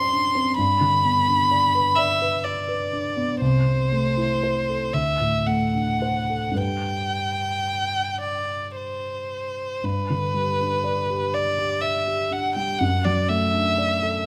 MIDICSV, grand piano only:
0, 0, Header, 1, 2, 480
1, 0, Start_track
1, 0, Key_signature, 1, "major"
1, 0, Tempo, 923077
1, 298, Time_signature, 6, 3, 24, 8
1, 1265, Tempo, 988468
1, 2225, Tempo, 1047120
1, 2705, Tempo, 1092896
1, 4625, Tempo, 985222
1, 6784, End_track
2, 0, Start_track
2, 0, Title_t, "Grand piano"
2, 0, Program_c, 0, 0
2, 0, Control_c, 0, 64, 127
2, 0, Note_on_c, 0, 42, 44
2, 0, Note_on_c, 0, 54, 32
2, 0, Note_on_c, 0, 60, 31
2, 0, Note_on_c, 0, 62, 34
2, 0, Note_on_c, 0, 72, 39
2, 0, Note_on_c, 0, 74, 33
2, 68, Note_off_c, 0, 62, 0
2, 68, Note_on_c, 0, 62, 33
2, 135, Note_off_c, 0, 72, 0
2, 182, Note_off_c, 0, 60, 0
2, 182, Note_on_c, 0, 60, 35
2, 253, Note_off_c, 0, 62, 0
2, 280, Note_off_c, 0, 42, 0
2, 299, Note_off_c, 0, 60, 0
2, 303, Note_on_c, 0, 43, 48
2, 307, Control_c, 0, 64, 0
2, 310, Note_off_c, 0, 54, 0
2, 310, Note_off_c, 0, 74, 0
2, 387, Control_c, 0, 64, 127
2, 420, Note_on_c, 0, 50, 31
2, 544, Note_on_c, 0, 59, 33
2, 612, Note_off_c, 0, 50, 0
2, 664, Note_on_c, 0, 62, 34
2, 735, Note_off_c, 0, 59, 0
2, 787, Note_on_c, 0, 74, 33
2, 856, Note_off_c, 0, 62, 0
2, 909, Note_on_c, 0, 71, 37
2, 978, Note_off_c, 0, 74, 0
2, 1031, Note_on_c, 0, 74, 37
2, 1099, Note_off_c, 0, 71, 0
2, 1153, Note_on_c, 0, 71, 37
2, 1221, Note_off_c, 0, 74, 0
2, 1274, Note_on_c, 0, 74, 37
2, 1339, Note_off_c, 0, 71, 0
2, 1387, Note_on_c, 0, 71, 36
2, 1455, Note_off_c, 0, 74, 0
2, 1506, Note_on_c, 0, 62, 33
2, 1572, Note_off_c, 0, 71, 0
2, 1621, Note_on_c, 0, 59, 36
2, 1693, Note_off_c, 0, 62, 0
2, 1719, Note_off_c, 0, 43, 0
2, 1739, Note_off_c, 0, 59, 0
2, 1741, Note_on_c, 0, 36, 43
2, 1746, Control_c, 0, 64, 0
2, 1812, Control_c, 0, 64, 127
2, 1864, Note_on_c, 0, 48, 30
2, 1988, Note_on_c, 0, 57, 33
2, 2056, Note_off_c, 0, 48, 0
2, 2109, Note_on_c, 0, 64, 31
2, 2180, Note_off_c, 0, 57, 0
2, 2236, Note_on_c, 0, 72, 34
2, 2299, Note_off_c, 0, 64, 0
2, 2353, Note_on_c, 0, 69, 30
2, 2419, Note_off_c, 0, 72, 0
2, 2445, Note_off_c, 0, 36, 0
2, 2467, Note_off_c, 0, 69, 0
2, 2467, Note_on_c, 0, 38, 38
2, 2471, Control_c, 0, 64, 0
2, 2557, Control_c, 0, 64, 127
2, 2588, Note_on_c, 0, 45, 30
2, 2710, Note_on_c, 0, 57, 26
2, 2780, Note_off_c, 0, 45, 0
2, 2831, Note_on_c, 0, 62, 28
2, 2901, Note_off_c, 0, 57, 0
2, 2952, Note_on_c, 0, 72, 31
2, 3023, Note_off_c, 0, 62, 0
2, 3074, Note_on_c, 0, 69, 31
2, 3144, Note_off_c, 0, 72, 0
2, 3169, Note_on_c, 0, 43, 32
2, 3175, Note_off_c, 0, 38, 0
2, 3176, Note_on_c, 0, 55, 27
2, 3181, Note_on_c, 0, 62, 28
2, 3187, Note_on_c, 0, 71, 25
2, 3193, Note_off_c, 0, 69, 0
2, 3199, Control_c, 0, 64, 0
2, 3268, Control_c, 0, 64, 127
2, 4599, Note_off_c, 0, 43, 0
2, 4603, Note_off_c, 0, 55, 0
2, 4605, Note_off_c, 0, 62, 0
2, 4608, Note_off_c, 0, 71, 0
2, 4629, Note_on_c, 0, 43, 37
2, 4637, Control_c, 0, 64, 0
2, 4723, Control_c, 0, 64, 127
2, 4758, Note_on_c, 0, 50, 32
2, 4874, Note_on_c, 0, 55, 30
2, 4950, Note_off_c, 0, 50, 0
2, 5003, Note_on_c, 0, 62, 36
2, 5068, Note_off_c, 0, 55, 0
2, 5118, Note_on_c, 0, 74, 35
2, 5193, Note_off_c, 0, 62, 0
2, 5244, Note_on_c, 0, 67, 34
2, 5310, Note_off_c, 0, 74, 0
2, 5363, Note_on_c, 0, 74, 36
2, 5432, Note_off_c, 0, 67, 0
2, 5481, Note_on_c, 0, 67, 38
2, 5551, Note_off_c, 0, 74, 0
2, 5598, Note_on_c, 0, 74, 34
2, 5669, Note_off_c, 0, 67, 0
2, 5719, Note_on_c, 0, 67, 35
2, 5786, Note_off_c, 0, 74, 0
2, 5834, Note_on_c, 0, 62, 34
2, 5907, Note_off_c, 0, 67, 0
2, 5957, Note_on_c, 0, 55, 36
2, 6024, Note_off_c, 0, 62, 0
2, 6052, Note_off_c, 0, 43, 0
2, 6074, Note_off_c, 0, 55, 0
2, 6076, Note_on_c, 0, 42, 45
2, 6079, Control_c, 0, 64, 0
2, 6170, Control_c, 0, 64, 127
2, 6196, Note_on_c, 0, 54, 32
2, 6315, Note_on_c, 0, 57, 39
2, 6384, Note_off_c, 0, 54, 0
2, 6433, Note_on_c, 0, 62, 37
2, 6503, Note_off_c, 0, 57, 0
2, 6552, Note_on_c, 0, 74, 38
2, 6622, Note_off_c, 0, 62, 0
2, 6670, Note_on_c, 0, 69, 39
2, 6741, Note_off_c, 0, 74, 0
2, 6784, Note_off_c, 0, 42, 0
2, 6784, Note_off_c, 0, 69, 0
2, 6784, End_track
0, 0, End_of_file